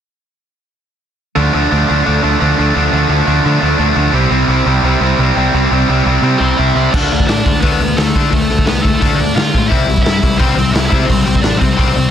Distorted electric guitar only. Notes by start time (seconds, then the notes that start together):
1.36 D3 A3 D4
1.54 D3 A3 D4
1.70 D3 A3 D4
1.88 D3 A3 D4
2.04 D3 A3 D4
2.22 D3 A3 D4
2.39 D3 A3 D4
2.58 D3 A3 D4
2.75 D3 A3 D4
2.91 D3 A3 D4
3.09 D3 A3 D4
3.26 D3 A3 D4
3.44 D3 A3 D4
3.60 D3 A3 D4
3.79 D3 A3 D4
3.95 D3 A3 D4
4.12 C3 G3 C4
4.30 C3 G3 C4
4.49 C3 G3 C4
4.66 C3 G3 C4
4.83 C3 G3 C4
5.01 C3 G3 C4
5.19 C3 G3 C4
5.37 C3 G3 C4
5.54 C3 G3 C4
5.71 C3 G3 C4
5.89 C3 G3 C4
6.06 C3 G3 C4
6.23 C3 G3 C4
6.39 C3 G3 C4
6.57 C3 G3 C4
6.75 C3 G3 C4
6.94 D3 A3 D4
7.12 D3 A3
7.29 D3 A3
7.47 D3 A3
7.63 D3 A3 D4
7.81 D3 A3
7.98 D3 A3
8.16 D3 A3 D4
8.33 D3 A3
8.50 D3 A3
8.65 D3 A3
8.84 D3 A3
9.01 D3 A3 D4
9.18 D3 A3
9.36 D3 A3
9.54 D3 A3
9.69 C3 G3 C4
9.87 C3 G3
10.05 C3 G3
10.23 C3 G3
10.39 C3 G3 C4
10.55 C3 G3
10.73 C3 G3
10.89 C3 G3 C4
11.08 C3 G3
11.25 C3 G3
11.43 C3 G3
11.59 C3 G3
11.77 C3 G3 C4
11.95 C3 G3